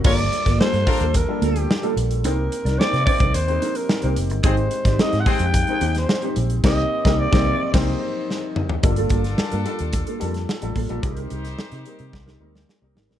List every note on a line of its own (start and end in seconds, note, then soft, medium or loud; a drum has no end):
0.04 0.28 G1 loud
0.04 0.42 G3 medium
0.04 0.19 A#3 medium
0.04 0.42 A#3 medium
0.04 0.16 D4 medium
0.04 0.43 D4 medium
0.04 0.16 F4 medium
0.04 0.19 F4 medium
0.04 0.43 F4 medium
0.04 0.17 A4 loud
0.04 0.43 A4 medium
0.04 0.16 A#4 loud
0.04 0.57 D5 loud
0.04 kick loud
0.04 crash loud
0.18 muted clean electric guitar stroke soft
0.18 closed hi-hat soft
0.32 muted clean electric guitar stroke soft
0.32 closed hi-hat medium
0.45 0.58 G1 loud
0.45 0.58 A#3 medium
0.45 0.57 F4 medium
0.45 0.57 A#4 medium
0.45 kick medium
0.45 snare soft
0.45 closed hi-hat medium
0.59 0.78 G3 medium
0.59 0.78 A#3 medium
0.59 0.74 A#3 medium
0.59 0.79 D4 medium
0.59 0.79 F4 medium
0.59 0.73 F4 loud
0.59 0.79 A4 medium
0.59 0.72 A4 loud
0.59 1.11 C5 loud
0.59 muted fingered electric bass stroke medium
0.59 snare loud
0.73 0.85 G2 medium
0.73 muted clean electric guitar stroke soft
0.73 snare soft
0.73 closed hi-hat soft
0.86 1.15 G3 medium
0.86 1.15 A#3 medium
0.86 1.15 D4 medium
0.86 1.04 D4 medium
0.86 1.04 F4 medium
0.86 1.15 F4 medium
0.86 1.16 A4 medium
0.86 1.04 A#4 loud
0.86 muted clean electric guitar stroke soft
0.86 kick loud
0.86 open hi-hat medium
1.00 1.24 D#2 medium
1.00 1.13 A#3 soft
1.00 1.12 F4 medium
1.00 1.12 A4 medium
1.00 closed hi-hat soft
1.14 1.46 A#4 medium
1.14 muted clean electric guitar stroke soft
1.14 kick medium
1.14 closed hi-hat loud
1.28 1.66 G3 medium
1.28 1.66 A#3 medium
1.28 1.66 D4 medium
1.28 1.66 F4 medium
1.28 1.66 A4 medium
1.28 muted clean electric guitar stroke soft
1.42 1.65 D2 loud
1.42 1.56 A#3 loud
1.42 1.56 F4 medium
1.42 1.98 G4 medium
1.42 1.55 A4 medium
1.42 closed hi-hat medium
1.56 1.68 A#3 soft
1.56 1.68 F4 medium
1.56 1.67 A4 medium
1.56 closed hi-hat medium
1.69 muted clean electric guitar stroke soft
1.69 snare loud
1.82 2.11 G3 medium
1.82 2.12 A#3 medium
1.82 1.95 A#3 medium
1.82 2.12 D4 medium
1.82 2.12 F4 medium
1.82 1.96 F4 medium
1.82 1.97 A4 medium
1.82 2.12 A4 medium
1.82 closed hi-hat soft
1.96 2.25 A#1 loud
1.96 muted clean electric guitar stroke soft
1.96 closed hi-hat medium
2.11 muted clean electric guitar stroke soft
2.11 closed hi-hat medium
2.24 2.47 C2 loud
2.24 2.62 A#3 medium
2.24 2.62 C4 medium
2.24 2.62 D#4 medium
2.24 2.39 D#4 medium
2.24 2.63 G4 medium
2.24 2.38 A#4 medium
2.24 2.80 A#4 medium
2.24 2.63 C5 medium
2.24 2.37 C5 loud
2.24 closed hi-hat medium
2.38 muted clean electric guitar stroke soft
2.52 muted clean electric guitar stroke soft
2.52 closed hi-hat medium
2.65 2.77 C2 loud
2.65 2.78 D#4 medium
2.65 2.77 A#4 medium
2.65 2.77 D5 medium
2.65 snare soft
2.65 closed hi-hat soft
2.78 2.98 A#3 medium
2.78 2.98 C4 medium
2.78 2.98 D#4 medium
2.78 2.94 D#4 medium
2.78 2.98 G4 medium
2.78 2.93 A#4 medium
2.78 2.98 C5 medium
2.78 2.92 C5 loud
2.78 3.05 D5 loud
2.78 snare loud
2.93 3.05 C3 medium
2.93 muted clean electric guitar stroke soft
2.93 snare soft
2.93 closed hi-hat soft
3.06 3.35 A#3 medium
3.06 3.35 C4 medium
3.06 3.35 D#4 medium
3.06 3.35 G4 medium
3.06 3.35 C5 medium
3.06 3.36 D5 loud
3.06 muted clean electric guitar stroke soft
3.06 kick loud
3.06 open hi-hat medium
3.20 3.32 C2 medium
3.20 3.33 D#4 soft
3.20 3.32 A#4 medium
3.20 3.32 C5 medium
3.20 kick loud
3.20 closed hi-hat medium
3.34 3.58 D#2 loud
3.34 3.78 C5 loud
3.34 muted clean electric guitar stroke soft
3.34 closed hi-hat loud
3.47 3.85 A#3 medium
3.47 3.86 C4 medium
3.47 3.86 D#4 medium
3.47 3.86 G4 medium
3.47 3.86 C5 medium
3.47 muted clean electric guitar stroke soft
3.47 closed hi-hat soft
3.62 3.76 D#4 loud
3.62 3.75 A#4 medium
3.62 3.74 C5 medium
3.62 closed hi-hat medium
3.75 3.88 D#4 medium
3.75 4.17 A#4 medium
3.75 3.87 A#4 medium
3.75 3.87 C5 medium
3.75 closed hi-hat medium
3.89 snare loud
4.02 4.15 C2 medium
4.02 4.31 A#3 medium
4.02 4.31 C4 medium
4.02 4.31 D#4 medium
4.02 4.17 D#4 medium
4.02 4.32 G4 medium
4.02 4.17 A#4 medium
4.02 4.17 C5 loud
4.02 4.32 C5 medium
4.02 closed hi-hat soft
4.16 4.31 F1 medium
4.16 muted clean electric guitar stroke soft
4.16 closed hi-hat medium
4.30 4.42 G1 medium
4.30 muted clean electric guitar stroke medium
4.30 closed hi-hat medium
4.43 4.67 G#1 loud
4.43 4.82 G#3 medium
4.43 4.55 C4 loud
4.43 4.82 C4 medium
4.43 4.58 D#4 medium
4.43 4.82 D#4 medium
4.43 4.82 G4 medium
4.43 4.58 G4 loud
4.43 4.55 G#4 loud
4.43 4.56 C5 loud
4.43 4.82 C5 medium
4.43 5.02 C5 medium
4.43 4.57 C5 medium
4.43 kick loud
4.43 closed hi-hat medium
4.57 muted clean electric guitar stroke soft
4.57 closed hi-hat soft
4.71 muted clean electric guitar stroke soft
4.71 closed hi-hat medium
4.85 4.97 G#1 loud
4.85 4.98 D#4 soft
4.85 4.97 G4 medium
4.85 4.97 D5 medium
4.85 kick medium
4.85 snare soft
4.85 closed hi-hat medium
4.99 5.18 G#3 medium
4.99 5.18 C4 medium
4.99 5.18 D#4 medium
4.99 5.14 D#4 loud
4.99 5.18 G4 medium
4.99 5.13 G4 medium
4.99 5.18 C5 medium
4.99 5.12 C5 medium
4.99 5.22 D#5 loud
4.99 muted fingered electric bass stroke medium
4.99 snare loud
5.13 5.24 G#2 loud
5.13 muted clean electric guitar stroke medium
5.13 snare soft
5.13 closed hi-hat soft
5.20 5.31 F#5 medium
5.26 5.55 G#3 medium
5.26 5.44 C4 loud
5.26 5.55 C4 medium
5.26 5.55 D#4 medium
5.26 5.55 G4 medium
5.26 5.44 G#4 loud
5.26 5.43 C5 loud
5.26 5.55 C5 medium
5.26 muted clean electric guitar stroke soft
5.26 kick loud
5.26 open hi-hat medium
5.30 5.97 G5 loud
5.39 5.63 F2 medium
5.39 5.52 D#4 soft
5.39 5.52 G4 medium
5.39 5.52 C5 medium
5.39 closed hi-hat medium
5.54 muted clean electric guitar stroke medium
5.54 kick medium
5.54 closed hi-hat loud
5.67 6.06 G#3 medium
5.67 6.06 C4 medium
5.67 6.06 D#4 medium
5.67 6.06 G4 medium
5.67 6.06 C5 medium
5.67 muted clean electric guitar stroke soft
5.67 closed hi-hat soft
5.81 6.04 D#2 loud
5.81 5.95 D#4 loud
5.81 5.95 G4 loud
5.81 5.94 C5 medium
5.81 closed hi-hat medium
5.95 6.07 D#4 soft
5.95 6.07 G4 medium
5.95 6.06 C5 medium
5.95 6.35 C5 medium
5.95 snare soft
5.95 closed hi-hat medium
6.09 snare loud
6.22 6.51 G#3 medium
6.22 6.51 C4 medium
6.22 6.51 D#4 medium
6.22 6.36 D#4 medium
6.22 6.51 G4 medium
6.22 6.36 G4 medium
6.22 6.37 C5 loud
6.22 6.51 C5 medium
6.22 closed hi-hat soft
6.36 6.59 A#1 loud
6.36 muted clean electric guitar stroke soft
6.36 closed hi-hat medium
6.50 muted clean electric guitar stroke soft
6.50 closed hi-hat medium
6.64 6.82 C2 loud
6.64 6.82 A#3 loud
6.64 6.82 C4 loud
6.64 6.82 D#4 loud
6.64 6.83 D#4 loud
6.64 6.83 G4 loud
6.64 6.83 A#4 loud
6.64 6.83 C5 loud
6.64 7.22 D#5 loud
6.64 kick loud
6.64 snare loud
6.64 crash medium
7.04 7.24 C2 loud
7.04 7.23 A#3 loud
7.04 7.23 C4 loud
7.04 7.24 D#4 medium
7.04 7.25 D#4 loud
7.04 7.24 G4 medium
7.04 7.24 A#4 loud
7.04 7.24 C5 medium
7.04 kick loud
7.04 snare loud
7.20 7.74 D5 loud
7.32 7.51 C2 loud
7.32 7.51 A#3 loud
7.32 7.51 C4 loud
7.32 7.51 D#4 medium
7.32 7.51 D#4 loud
7.32 7.51 G4 loud
7.32 7.51 A#4 medium
7.32 7.51 C5 loud
7.32 7.52 C5 medium
7.32 kick loud
7.32 snare loud
7.73 7.92 C2 loud
7.73 7.92 A#3 loud
7.73 7.92 C4 loud
7.73 7.92 D#4 loud
7.73 7.93 D#4 loud
7.73 7.92 G4 loud
7.73 7.93 A#4 loud
7.73 7.92 C5 loud
7.73 7.93 C5 loud
7.73 8.52 C5 medium
7.73 kick loud
7.73 snare loud
7.73 crash medium
8.30 snare medium
8.56 mid tom medium
8.69 floor tom medium
8.83 9.07 G1 loud
8.83 9.40 G3 medium
8.83 9.40 A#3 medium
8.83 9.40 D4 medium
8.83 10.72 D4 loud
8.83 9.40 F4 medium
8.83 10.72 F4 medium
8.83 10.72 A4 loud
8.83 9.41 A4 medium
8.83 muted clean electric guitar stroke soft
8.83 kick loud
8.83 closed hi-hat medium
8.96 9.10 A#3 medium
8.96 9.11 F4 medium
8.96 9.11 A4 medium
8.96 closed hi-hat medium
9.10 9.34 G1 medium
9.10 9.22 A#3 medium
9.10 9.23 F4 medium
9.10 9.23 A4 medium
9.10 kick loud
9.10 closed hi-hat medium
9.24 muted clean electric guitar stroke soft
9.24 snare soft
9.24 closed hi-hat medium
9.38 muted clean electric guitar stroke soft
9.38 snare loud
9.52 9.64 G2 loud
9.52 9.65 A#3 medium
9.52 9.65 F4 medium
9.52 9.66 A#4 medium
9.52 closed hi-hat medium
9.65 10.03 G3 medium
9.65 10.03 A#3 medium
9.65 10.03 D4 medium
9.65 10.04 F4 medium
9.65 10.04 A4 loud
9.65 muted clean electric guitar stroke soft
9.65 closed hi-hat medium
9.79 10.03 D#2 medium
9.79 muted clean electric guitar stroke medium
9.79 closed hi-hat medium
9.93 muted clean electric guitar stroke soft
9.93 kick medium
9.93 closed hi-hat loud
10.07 10.20 A#3 medium
10.07 10.21 F4 medium
10.07 10.21 A4 medium
10.07 closed hi-hat medium
10.19 10.44 F2 loud
10.19 10.48 G3 medium
10.19 10.49 A#3 medium
10.19 10.32 A#3 medium
10.19 10.49 D4 medium
10.19 10.49 F4 medium
10.19 10.33 F4 medium
10.19 10.49 A4 loud
10.19 closed hi-hat medium
10.23 10.33 A4 medium
10.34 muted clean electric guitar stroke soft
10.34 snare soft
10.34 closed hi-hat medium
10.49 muted clean electric guitar stroke soft
10.49 snare loud
10.61 10.74 A1 medium
10.61 10.81 G3 loud
10.61 10.81 A#3 medium
10.61 10.81 D4 medium
10.61 10.81 F4 medium
10.61 10.81 A4 loud
10.61 muted clean electric guitar stroke soft
10.61 closed hi-hat medium
10.76 10.87 A1 medium
10.76 10.90 A#3 medium
10.76 10.90 F4 loud
10.76 10.89 A4 loud
10.76 kick medium
10.76 open hi-hat medium
10.89 11.02 A#1 medium
10.89 10.99 G3 loud
10.89 10.99 A#3 medium
10.89 11.02 A#3 medium
10.89 10.99 D4 medium
10.89 10.99 F4 medium
10.89 11.01 F4 medium
10.89 11.01 A4 medium
10.89 10.99 A4 loud
10.89 closed hi-hat medium
11.02 11.26 C2 loud
11.02 11.60 G3 medium
11.02 11.60 A#3 medium
11.02 11.60 C4 medium
11.02 12.92 D#4 loud
11.02 11.60 D#4 medium
11.02 12.92 G4 loud
11.02 11.10 G#4 medium
11.02 12.92 C5 loud
11.02 kick loud
11.02 closed hi-hat medium
11.10 11.64 A#4 medium
11.17 11.29 D#4 medium
11.17 11.30 G4 medium
11.17 11.31 A#4 medium
11.17 closed hi-hat medium
11.30 11.54 C2 loud
11.30 11.42 D#4 medium
11.30 11.42 G4 medium
11.30 11.43 A#4 medium
11.30 closed hi-hat medium
11.45 snare soft
11.45 closed hi-hat medium
11.58 muted clean electric guitar stroke soft
11.58 snare loud
11.72 11.84 C3 medium
11.72 11.85 D#4 medium
11.72 11.85 G4 medium
11.72 11.86 C5 medium
11.72 snare soft
11.72 closed hi-hat medium
11.85 12.23 G3 medium
11.85 12.24 A#3 medium
11.85 12.24 C4 medium
11.85 12.24 D#4 medium
11.85 12.24 A#4 loud
11.85 muted clean electric guitar stroke soft
11.85 closed hi-hat medium
11.99 12.11 C3 medium
11.99 muted clean electric guitar stroke medium
11.99 closed hi-hat medium
12.13 12.36 C2 loud
12.13 muted clean electric guitar stroke soft
12.13 kick medium
12.13 snare medium
12.26 12.39 D#4 medium
12.26 12.39 G4 medium
12.26 12.40 A#4 medium
12.26 snare medium
12.40 12.63 D2 loud
12.40 12.69 G3 medium
12.40 12.69 A#3 medium
12.40 12.69 C4 medium
12.40 12.52 D#4 medium
12.40 12.69 D#4 medium
12.40 12.52 G4 medium
12.40 12.69 A#4 medium
12.40 12.52 A#4 medium
12.54 muted clean electric guitar stroke soft
12.54 snare medium
12.68 muted clean electric guitar stroke soft
12.68 snare medium
12.81 12.94 C2 medium
12.81 13.01 G3 medium
12.81 13.01 A#3 medium
12.81 13.01 C4 medium
12.81 13.01 D#4 medium
12.81 13.01 A#4 loud
12.81 muted clean electric guitar stroke soft
12.95 13.07 G#1 medium
12.95 13.10 D#4 medium
12.95 13.09 G4 medium
12.95 13.08 A#4 medium
12.95 snare loud
13.09 13.19 A#1 medium
13.09 13.19 G3 medium
13.09 13.19 A#3 medium
13.09 13.19 C4 medium
13.09 13.19 D#4 medium
13.09 13.19 A#4 medium
13.09 snare medium